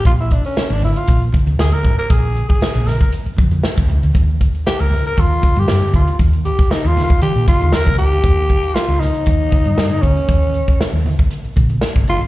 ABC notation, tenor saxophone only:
X:1
M:4/4
L:1/16
Q:1/4=117
K:Eb
V:1 name="Tenor saxophone"
F =E D _D2 =D E F2 z3 A B2 B | A3 A3 B2 z8 | z4 G B2 B F3 G3 F2 | z2 G2 (3E2 F2 F2 G2 F2 B2 G2- |
G4 F2 E8 _D2- | _D6 z8 F2 |]